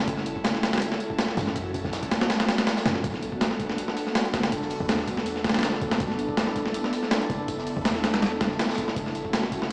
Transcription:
0.00 3.00 C#4 medium
0.00 3.00 E4 medium
0.00 3.00 F#4 medium
0.00 3.00 A4 medium
0.07 0.99 F#1 loud
0.07 kick loud
0.07 closed hi-hat medium
0.07 tambourine loud
0.17 snare soft
0.26 closed hi-hat medium
0.26 tambourine medium
0.36 kick medium
0.44 snare loud
0.44 closed hi-hat medium
0.44 tambourine medium
0.55 snare medium
0.63 snare loud
0.63 closed hi-hat medium
0.63 tambourine medium
0.73 snare medium
0.73 closed hi-hat medium
0.78 snare medium
0.78 closed hi-hat medium
0.82 closed hi-hat medium
0.82 tambourine medium
0.92 snare medium
1.00 closed hi-hat medium
1.00 tambourine medium
1.10 kick medium
1.19 snare loud
1.19 closed hi-hat medium
1.19 tambourine loud
1.28 snare soft
1.28 snare medium
1.37 1.83 F#2 loud
1.37 kick medium
1.37 snare loud
1.37 closed hi-hat medium
1.37 tambourine medium
1.47 snare medium
1.56 kick loud
1.56 closed hi-hat medium
1.56 tambourine medium
1.74 kick loud
1.74 closed hi-hat medium
1.74 tambourine medium
1.84 2.47 B1 medium
1.84 snare soft
1.93 snare loud
1.93 closed hi-hat medium
1.93 tambourine medium
2.03 kick loud
2.03 snare soft
2.03 closed hi-hat medium
2.11 snare loud
2.11 closed hi-hat medium
2.11 tambourine medium
2.21 snare loud
2.21 closed hi-hat medium
2.30 snare loud
2.30 closed hi-hat medium
2.30 tambourine medium
2.40 snare loud
2.40 closed hi-hat medium
2.48 snare loud
2.48 snare medium
2.48 closed hi-hat medium
2.48 tambourine medium
2.58 snare soft
2.58 snare loud
2.58 closed hi-hat medium
2.67 snare loud
2.67 closed hi-hat medium
2.67 tambourine medium
2.77 snare loud
2.77 snare soft
2.77 tambourine medium
2.85 3.02 F#2 loud
2.85 snare loud
2.85 closed hi-hat medium
2.85 tambourine medium
2.96 snare medium
3.04 3.95 B1 loud
3.04 8.92 B3 medium
3.04 8.92 D4 medium
3.04 5.97 F#4 medium
3.04 9.72 A4 loud
3.04 kick loud
3.04 closed hi-hat medium
3.04 tambourine medium
3.14 snare soft
3.22 closed hi-hat medium
3.22 tambourine medium
3.32 kick loud
3.41 snare loud
3.41 closed hi-hat medium
3.41 tambourine medium
3.51 snare medium
3.60 kick loud
3.60 closed hi-hat medium
3.60 tambourine medium
3.70 snare medium
3.78 closed hi-hat medium
3.78 tambourine medium
3.88 snare medium
3.97 open hi-hat medium
3.97 tambourine medium
4.07 snare soft
4.15 snare loud
4.15 closed hi-hat medium
4.15 tambourine medium
4.25 snare medium
4.25 closed hi-hat soft
4.33 4.79 F#1 loud
4.33 snare loud
4.33 closed hi-hat medium
4.33 tambourine medium
4.43 snare loud
4.43 closed hi-hat medium
4.52 kick loud
4.52 closed hi-hat medium
4.52 tambourine medium
4.62 snare soft
4.70 closed hi-hat medium
4.70 open hi-hat medium
4.80 5.43 E2 medium
4.80 kick loud
4.89 snare loud
4.89 closed hi-hat medium
4.89 tambourine medium
4.99 snare soft
5.08 kick loud
5.08 closed hi-hat medium
5.08 tambourine medium
5.17 snare medium
5.26 closed hi-hat medium
5.26 tambourine loud
5.36 snare soft
5.44 5.80 F#1 medium
5.44 snare medium
5.44 closed hi-hat medium
5.44 tambourine medium
5.49 snare medium
5.49 closed hi-hat medium
5.54 snare soft
5.54 snare loud
5.54 closed hi-hat medium
5.59 snare medium
5.59 closed hi-hat medium
5.63 snare loud
5.63 closed hi-hat medium
5.63 tambourine medium
5.73 snare soft
5.81 5.98 B1 loud
5.81 kick medium
5.81 closed hi-hat medium
5.81 tambourine medium
5.91 snare loud
5.91 snare medium
5.91 closed hi-hat medium
6.00 6.91 B1 loud
6.00 9.72 E4 medium
6.00 kick loud
6.00 closed hi-hat medium
6.00 tambourine medium
6.10 snare soft
6.19 closed hi-hat medium
6.19 tambourine medium
6.29 kick loud
6.37 snare loud
6.37 closed hi-hat medium
6.37 tambourine medium
6.47 snare medium
6.56 kick medium
6.56 closed hi-hat medium
6.56 tambourine medium
6.66 snare medium
6.74 closed hi-hat medium
6.74 tambourine medium
6.84 snare medium
6.93 open hi-hat medium
6.93 tambourine medium
7.03 snare soft
7.11 snare loud
7.11 closed hi-hat medium
7.11 tambourine medium
7.21 snare medium
7.21 closed hi-hat soft
7.30 7.75 F#1 loud
7.30 kick loud
7.30 closed hi-hat medium
7.30 tambourine medium
7.48 kick loud
7.48 closed hi-hat medium
7.48 tambourine loud
7.58 snare medium
7.67 closed hi-hat medium
7.67 open hi-hat medium
7.77 8.40 E2 medium
7.77 kick medium
7.85 snare loud
7.85 closed hi-hat medium
7.85 tambourine medium
7.95 snare soft
8.04 snare loud
8.04 closed hi-hat medium
8.04 tambourine medium
8.14 snare loud
8.14 closed hi-hat medium
8.22 snare loud
8.22 closed hi-hat medium
8.22 tambourine medium
8.40 8.58 F#1 medium
8.40 snare loud
8.40 closed hi-hat medium
8.40 tambourine medium
8.51 snare soft
8.59 snare loud
8.59 closed hi-hat medium
8.59 tambourine medium
8.69 snare soft
8.69 snare medium
8.69 tambourine medium
8.74 snare loud
8.74 tambourine medium
8.78 kick medium
8.78 closed hi-hat medium
8.78 tambourine medium
8.88 snare medium
8.96 9.72 F#1 loud
8.96 9.72 C#4 medium
8.96 9.72 F#4 medium
8.96 kick loud
8.96 closed hi-hat medium
8.96 tambourine medium
9.06 snare soft
9.15 closed hi-hat medium
9.15 tambourine medium
9.25 kick loud
9.33 snare loud
9.33 closed hi-hat medium
9.33 tambourine medium
9.43 snare medium
9.52 kick loud
9.52 closed hi-hat medium
9.52 tambourine medium
9.62 snare medium

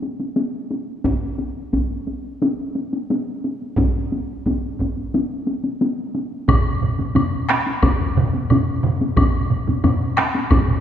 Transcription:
0.02 taiko high soft
0.20 taiko high soft
0.36 taiko high medium
0.54 taiko high soft
0.71 taiko high soft
0.88 taiko high soft
1.04 taiko medium
1.04 taiko high medium
1.22 taiko high soft
1.39 taiko high soft
1.56 taiko high soft
1.73 taiko medium
1.73 taiko high medium
1.91 taiko high soft
2.07 taiko high soft
2.25 taiko high soft
2.42 taiko high medium
2.59 taiko high soft
2.76 taiko high soft
2.93 taiko high soft
3.10 taiko high medium
3.28 taiko high soft
3.44 taiko high soft
3.62 taiko high soft
3.77 taiko medium
3.77 taiko high medium
3.96 taiko high soft
4.12 taiko high soft
4.30 taiko high soft
4.46 taiko medium
4.46 taiko high medium
4.63 taiko high soft
4.79 taiko medium
4.79 taiko high soft
4.97 taiko high soft
5.14 taiko high medium
5.30 taiko high soft
5.47 taiko high soft
5.64 taiko high soft
5.81 taiko high medium
5.98 taiko high soft
6.15 taiko high soft
6.32 taiko high soft
6.48 taiko medium
6.48 taiko low-mid medium
6.48 taiko mid medium
6.48 taiko high soft
6.48 high woodblock medium
6.81 taiko low-mid medium
6.81 taiko mid medium
6.98 taiko low-mid medium
6.98 taiko mid medium
6.98 taiko high soft
7.16 taiko low-mid medium
7.16 taiko mid medium
7.16 taiko high medium
7.16 high woodblock soft
7.49 taiko rim medium
7.49 taiko high soft
7.49 high woodblock soft
7.66 taiko high soft
7.83 taiko medium
7.83 taiko low-mid medium
7.83 taiko mid medium
7.83 taiko high medium
7.83 high woodblock soft
8.00 taiko low-mid medium
8.00 taiko mid medium
8.16 taiko low-mid medium
8.16 taiko mid medium
8.34 taiko high soft
8.50 taiko low-mid medium
8.50 taiko mid medium
8.50 taiko high medium
8.50 high woodblock soft
8.83 taiko low-mid medium
8.83 taiko mid medium
9.01 taiko high soft
9.17 taiko medium
9.17 taiko low-mid medium
9.17 taiko mid medium
9.17 taiko high medium
9.17 high woodblock soft
9.51 taiko low-mid medium
9.51 taiko mid medium
9.67 taiko low-mid medium
9.67 taiko mid medium
9.67 taiko high soft
9.84 taiko low-mid medium
9.84 taiko mid medium
9.84 taiko high medium
9.84 high woodblock soft
10.17 taiko rim medium
10.17 taiko high soft
10.17 high woodblock soft
10.35 taiko high medium
10.51 taiko medium
10.51 taiko low-mid medium
10.51 taiko mid medium
10.51 taiko high medium
10.51 high woodblock soft
10.67 taiko low-mid medium
10.67 taiko mid medium

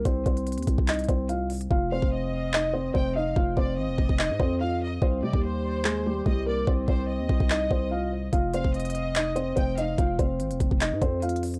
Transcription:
0.05 0.25 C2 loud
0.05 0.24 C4 medium
0.05 0.23 C5 medium
0.05 kick loud
0.05 closed hi-hat medium
0.26 0.59 C2 loud
0.26 0.85 C4 medium
0.26 0.85 C5 medium
0.26 kick medium
0.26 closed hi-hat medium
0.37 closed hi-hat medium
0.47 closed hi-hat medium
0.52 closed hi-hat medium
0.58 0.67 D#2 loud
0.58 closed hi-hat medium
0.62 closed hi-hat medium
0.67 0.78 C2 loud
0.67 kick loud
0.67 closed hi-hat medium
0.78 1.07 C2 loud
0.78 kick loud
0.88 1.07 D#4 medium
0.88 1.06 D#5 medium
0.88 clap loud
0.88 closed hi-hat medium
0.93 closed hi-hat medium
0.99 closed hi-hat medium
1.04 closed hi-hat soft
1.09 1.68 C2 loud
1.09 1.27 C4 medium
1.09 1.27 C5 medium
1.09 kick medium
1.09 closed hi-hat medium
1.29 1.48 F4 medium
1.29 1.47 F5 medium
1.29 closed hi-hat medium
1.50 closed hi-hat soft
1.50 open hi-hat medium
1.61 closed hi-hat medium
1.70 2.01 F1 loud
1.70 1.89 F4 medium
1.70 1.89 F5 medium
1.70 kick loud
1.91 2.51 C4 medium
1.91 2.50 C5 medium
1.91 2.11 F5 medium
2.02 2.91 F1 loud
2.02 kick loud
2.12 2.91 D#5 loud
2.53 2.72 D#4 medium
2.53 2.72 D#5 medium
2.53 clap loud
2.73 2.92 C4 medium
2.73 2.92 C5 medium
2.94 3.35 F1 loud
2.94 3.13 C4 medium
2.94 3.12 C5 medium
2.94 3.14 G5 medium
2.94 kick medium
3.16 3.34 D#4 medium
3.16 3.34 D#5 medium
3.16 3.35 F5 medium
3.36 3.56 F1 loud
3.36 3.55 F4 medium
3.36 3.54 F5 medium
3.36 kick loud
3.57 3.79 F1 loud
3.57 4.16 C4 medium
3.57 4.15 C5 medium
3.57 3.77 D5 medium
3.57 kick medium
3.78 3.90 G#1 loud
3.78 4.56 D#5 medium
3.89 3.98 F1 loud
3.98 4.09 F1 loud
3.98 kick loud
4.09 4.31 F1 loud
4.09 kick medium
4.19 4.38 D#4 medium
4.19 4.37 D#5 medium
4.19 clap loud
4.30 4.39 G#2 medium
4.40 4.99 F2 loud
4.40 4.58 C4 medium
4.40 4.58 C5 medium
4.40 kick medium
4.61 4.79 F4 medium
4.61 4.79 F5 medium
4.61 4.80 F5 medium
4.82 5.01 D#5 medium
5.02 5.24 C2 loud
5.02 5.21 C4 medium
5.02 5.20 C5 medium
5.02 kick loud
5.22 5.33 C3 loud
5.22 5.81 G3 medium
5.22 5.81 G4 medium
5.22 5.42 D5 medium
5.33 6.22 D#2 loud
5.33 kick medium
5.43 6.22 C5 loud
5.84 6.03 G#3 medium
5.84 6.03 G#4 medium
5.84 clap loud
6.06 6.24 G3 medium
6.06 6.24 G4 medium
6.26 6.66 C2 loud
6.26 6.45 G3 medium
6.26 6.44 G4 medium
6.26 6.46 D#5 medium
6.26 kick medium
6.46 6.65 A#3 medium
6.46 6.64 A#4 medium
6.46 6.67 D5 medium
6.67 6.87 C2 loud
6.67 6.86 C4 medium
6.67 6.85 C5 medium
6.67 kick loud
6.88 7.21 C2 loud
6.88 7.47 C4 medium
6.88 7.07 C5 medium
6.88 7.47 C5 medium
6.88 kick loud
7.08 8.29 D#5 medium
7.20 7.29 D#2 loud
7.29 7.40 C2 loud
7.29 kick loud
7.40 7.69 C2 loud
7.40 kick loud
7.50 7.69 D#4 medium
7.50 7.69 D#5 medium
7.50 clap loud
7.71 8.30 C2 loud
7.71 7.89 C4 medium
7.71 7.89 C5 medium
7.71 kick medium
7.91 8.10 F4 medium
7.91 8.09 F5 medium
8.33 8.63 F1 loud
8.33 8.51 F4 medium
8.33 8.51 F5 medium
8.33 kick loud
8.33 closed hi-hat medium
8.53 9.13 C4 medium
8.53 9.12 C5 medium
8.53 8.73 F5 medium
8.53 closed hi-hat medium
8.64 9.53 F1 loud
8.64 kick medium
8.74 9.53 D#5 loud
8.74 closed hi-hat soft
8.80 closed hi-hat medium
8.85 closed hi-hat medium
8.90 closed hi-hat medium
8.95 closed hi-hat medium
9.15 9.34 D#4 medium
9.15 9.34 D#5 medium
9.15 clap loud
9.15 closed hi-hat medium
9.36 9.54 C4 medium
9.36 9.54 C5 medium
9.36 closed hi-hat medium
9.56 9.97 F1 loud
9.56 9.75 C4 medium
9.56 9.75 C5 medium
9.56 9.77 G5 medium
9.56 kick medium
9.56 closed hi-hat medium
9.78 9.96 D#4 medium
9.78 9.96 D#5 medium
9.78 9.97 F5 medium
9.78 closed hi-hat medium
9.98 10.18 F1 loud
9.98 10.17 F4 medium
9.98 10.16 F5 medium
9.98 kick loud
9.98 closed hi-hat medium
10.19 10.41 F1 loud
10.19 10.78 C4 medium
10.19 10.77 C5 medium
10.19 kick loud
10.19 closed hi-hat medium
10.40 10.52 G#1 loud
10.40 closed hi-hat medium
10.51 10.60 F1 loud
10.51 closed hi-hat medium
10.60 10.71 F1 loud
10.60 kick loud
10.60 closed hi-hat medium
10.71 10.94 F1 loud
10.71 kick loud
10.81 11.00 D#4 medium
10.81 10.99 D#5 medium
10.81 clap loud
10.81 closed hi-hat medium
10.92 11.01 G#2 loud
11.02 11.59 F2 loud
11.02 11.20 C4 medium
11.02 11.20 C5 medium
11.02 kick medium
11.02 closed hi-hat medium
11.22 11.41 F4 medium
11.22 11.41 F5 medium
11.22 closed hi-hat medium
11.29 closed hi-hat medium
11.36 closed hi-hat medium
11.43 closed hi-hat medium
11.43 open hi-hat medium
11.54 closed hi-hat medium

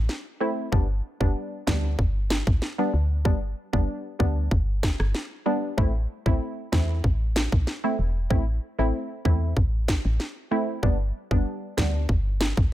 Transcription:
0.09 snare medium
0.41 0.70 A3 medium
0.41 0.70 C4 medium
0.41 0.70 E4 medium
0.72 1.01 G1 loud
0.72 0.86 G3 medium
0.72 0.87 B3 medium
0.72 0.87 D4 loud
0.72 kick loud
1.20 1.34 G1 loud
1.20 1.63 G3 medium
1.20 1.64 B3 medium
1.20 1.64 D4 medium
1.20 kick medium
1.67 1.96 D2 medium
1.67 1.96 G3 medium
1.67 1.96 B3 medium
1.67 1.96 D4 medium
1.67 kick medium
1.67 snare loud
1.99 2.43 G1 loud
1.99 kick medium
2.30 snare loud
2.47 2.61 A1 medium
2.47 kick medium
2.62 snare medium
2.78 2.91 G3 medium
2.78 2.91 B3 medium
2.78 2.91 D4 medium
2.94 3.27 D2 medium
3.25 3.54 G1 loud
3.25 3.39 G3 medium
3.25 3.39 B3 medium
3.25 3.40 D4 loud
3.25 kick loud
3.73 3.87 G1 medium
3.73 4.16 G3 medium
3.73 4.16 B3 medium
3.73 4.16 D4 medium
3.73 kick medium
4.19 4.49 D2 medium
4.19 4.49 G3 medium
4.19 4.49 B3 medium
4.19 4.49 D4 medium
4.19 kick loud
4.51 4.96 G1 loud
4.51 kick loud
4.83 kick medium
4.83 snare loud
5.00 5.13 G1 medium
5.00 cross-stick loud
5.15 snare medium
5.46 5.75 G3 medium
5.46 5.75 B3 medium
5.46 5.75 D4 medium
5.77 6.07 A1 loud
5.77 5.92 A3 medium
5.77 5.92 C4 medium
5.77 5.92 E4 loud
5.77 kick loud
6.26 6.40 A1 medium
6.26 6.69 A3 medium
6.26 6.69 C4 medium
6.26 6.69 E4 medium
6.26 kick medium
6.72 7.01 E2 medium
6.72 7.02 A3 medium
6.72 7.02 C4 medium
6.72 7.02 E4 medium
6.72 kick medium
6.72 snare loud
7.04 7.48 A1 loud
7.04 kick medium
7.36 snare loud
7.52 7.66 B1 medium
7.52 kick loud
7.67 snare medium
7.84 7.96 A3 medium
7.84 7.97 C4 medium
7.84 7.97 E4 medium
7.99 8.28 E1 medium
8.30 8.59 A1 loud
8.30 8.45 A3 medium
8.30 8.45 C4 medium
8.30 8.45 E4 loud
8.30 kick loud
8.79 8.92 A1 medium
8.79 9.21 A3 medium
8.79 9.22 C4 medium
8.79 9.22 E4 medium
9.25 9.54 E2 medium
9.25 9.54 A3 medium
9.25 9.54 C4 medium
9.25 9.54 E4 medium
9.25 kick medium
9.57 10.01 A1 loud
9.57 kick medium
9.88 kick medium
9.88 snare loud
10.05 10.18 A1 loud
10.20 snare medium
10.51 10.80 A3 medium
10.51 10.81 C4 medium
10.51 10.81 E4 medium
10.83 11.12 G1 loud
10.83 10.97 G3 medium
10.83 10.97 B3 medium
10.83 10.97 D4 loud
10.83 kick loud
11.31 11.45 G1 loud
11.31 11.74 G3 medium
11.31 11.74 B3 medium
11.31 11.74 D4 medium
11.31 kick medium
11.77 12.07 D2 medium
11.77 12.07 G3 medium
11.77 12.07 B3 medium
11.77 12.07 D4 medium
11.77 kick loud
11.77 snare loud
12.09 12.53 G1 loud
12.09 kick medium
12.41 snare loud
12.57 12.71 A1 medium
12.57 kick loud

